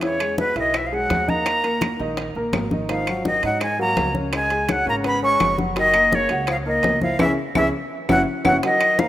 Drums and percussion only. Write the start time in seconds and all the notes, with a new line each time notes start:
0.01 high bongo, high conga, high timbale
0.20 high conga, high timbale, claves
0.38 high bongo, high conga, low timbale
0.56 high conga, high timbale
0.74 high bongo, high conga, high timbale, claves
0.93 high conga
1.10 high bongo, low bongo, high conga, high timbale, low timbale
1.29 high conga
1.46 high bongo, high conga, high timbale, claves
1.64 high bongo, high conga, high timbale
1.81 high bongo, high conga, high timbale, low timbale, claves
1.99 high bongo, high conga
2.17 high bongo, high conga, high timbale
2.35 high conga
2.53 high bongo, low bongo, high conga, high timbale, low timbale, claves
2.71 high bongo, high conga
2.89 high bongo, high conga, high timbale
3.07 high conga, high timbale, claves
3.25 high bongo, high conga, low timbale
3.43 high conga, high timbale
3.61 high bongo, high conga, high timbale, claves
3.79 high conga
3.97 high bongo, low bongo, high conga, high timbale, low timbale
4.15 high conga
4.33 high bongo, high conga, high timbale, claves
4.50 high bongo, high conga, high timbale
4.69 high bongo, high conga, high timbale, low timbale, claves
4.87 high bongo, high conga
5.04 high bongo, high conga, high timbale
5.22 high conga
5.40 high bongo, low bongo, high conga, high timbale, low timbale, claves
5.58 high bongo, high conga
5.76 high bongo, high conga, high timbale
5.94 high conga, high timbale, claves
6.11 high bongo, high conga, low timbale
6.29 high conga, high timbale
6.47 high bongo, high conga, high timbale, claves
6.66 high conga
6.83 high bongo, low bongo, high conga, high timbale, low timbale
7.01 high conga
7.19 low bongo, high conga, high timbale, claves
7.55 low bongo, high conga, high timbale, claves
8.09 low bongo, high conga, high timbale, claves
8.45 low bongo, high conga, high timbale, claves
8.63 high bongo, high conga, high timbale
8.81 high conga, high timbale, claves
8.99 high bongo, high conga, low timbale